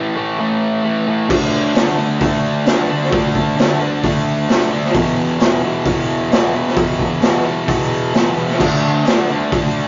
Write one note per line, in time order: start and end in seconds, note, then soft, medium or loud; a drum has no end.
0.00 0.15 A2 medium
0.00 0.16 E3 medium
0.00 0.16 A3 loud
0.16 0.38 A2 medium
0.16 0.38 E3 loud
0.16 0.39 A3 loud
0.39 0.82 A2 medium
0.39 0.83 E3 medium
0.39 0.84 A3 loud
0.84 1.06 A2 medium
0.84 1.07 E3 medium
0.84 1.07 A3 medium
1.08 1.29 A2 medium
1.08 1.29 E3 medium
1.08 1.28 A3 loud
1.29 1.74 D3 loud
1.29 1.75 A3 loud
1.29 1.75 D4 loud
1.29 kick loud
1.29 crash loud
1.74 1.97 D3 medium
1.74 1.98 A3 medium
1.74 1.99 D4 medium
1.74 snare loud
1.74 open hi-hat medium
1.98 2.19 D3 medium
1.98 2.20 A3 loud
1.98 2.20 D4 loud
2.20 2.65 D3 medium
2.20 2.66 A3 loud
2.20 2.66 D4 loud
2.20 kick loud
2.20 open hi-hat medium
2.66 2.88 D3 medium
2.66 2.89 A3 medium
2.66 2.89 D4 loud
2.66 snare loud
2.66 open hi-hat medium
2.89 3.11 D3 medium
2.89 3.11 A3 medium
2.89 3.12 D4 loud
3.03 snare soft
3.12 3.56 D3 medium
3.12 3.56 A3 loud
3.12 3.56 D4 loud
3.12 kick loud
3.12 open hi-hat medium
3.35 kick medium
3.57 3.79 D3 medium
3.57 3.79 A3 medium
3.57 3.80 D4 medium
3.57 snare loud
3.57 open hi-hat medium
3.81 4.02 D3 medium
3.81 4.03 A3 medium
3.81 4.03 D4 medium
4.03 4.48 D3 loud
4.03 4.49 A3 loud
4.03 4.49 D4 loud
4.03 kick loud
4.03 open hi-hat medium
4.49 4.71 D3 medium
4.49 4.72 A3 loud
4.49 4.72 D4 loud
4.49 snare loud
4.49 open hi-hat medium
4.72 4.94 D3 loud
4.72 4.94 A3 medium
4.72 4.94 D4 loud
4.85 snare soft
4.94 5.40 E2 loud
4.94 5.40 B2 medium
4.94 5.41 E3 loud
4.94 kick loud
4.94 open hi-hat medium
5.40 5.62 E2 medium
5.40 5.62 B2 medium
5.40 5.63 E3 loud
5.40 snare loud
5.40 open hi-hat medium
5.63 5.84 E2 loud
5.63 5.85 B2 loud
5.63 5.85 E3 loud
5.85 6.29 E2 loud
5.85 6.31 B2 loud
5.85 6.31 E3 loud
5.85 kick loud
5.85 open hi-hat medium
6.31 6.52 E2 medium
6.31 6.53 B2 medium
6.31 6.54 E3 loud
6.31 snare loud
6.31 open hi-hat medium
6.54 6.74 E2 medium
6.54 6.76 B2 loud
6.54 6.76 E3 medium
6.67 snare soft
6.75 7.20 E2 medium
6.75 7.21 B2 loud
6.75 7.22 E3 loud
6.75 kick loud
6.75 open hi-hat medium
6.99 kick medium
7.22 7.43 E2 medium
7.22 7.44 B2 medium
7.22 7.44 E3 medium
7.22 snare loud
7.22 open hi-hat medium
7.44 7.66 E2 medium
7.44 7.67 B2 medium
7.44 7.67 E3 loud
7.67 8.13 E2 loud
7.67 8.14 B2 loud
7.67 8.15 E3 loud
7.67 kick loud
7.67 open hi-hat medium
8.14 8.36 E2 medium
8.14 8.37 B2 medium
8.14 8.37 E3 medium
8.14 snare loud
8.14 open hi-hat medium
8.37 8.59 E2 medium
8.37 8.59 B2 medium
8.37 8.60 E3 medium
8.50 snare soft
8.59 9.05 D3 medium
8.59 9.06 A3 loud
8.59 9.07 D4 loud
8.59 kick loud
8.59 crash loud
9.06 9.29 D3 medium
9.06 9.30 A3 medium
9.06 9.30 D4 medium
9.06 snare loud
9.06 clap medium
9.06 open hi-hat medium
9.30 9.51 D3 medium
9.30 9.52 A3 medium
9.30 9.52 D4 loud
9.52 9.88 D3 loud
9.52 9.88 A3 loud
9.52 9.88 D4 loud
9.52 kick loud
9.52 open hi-hat medium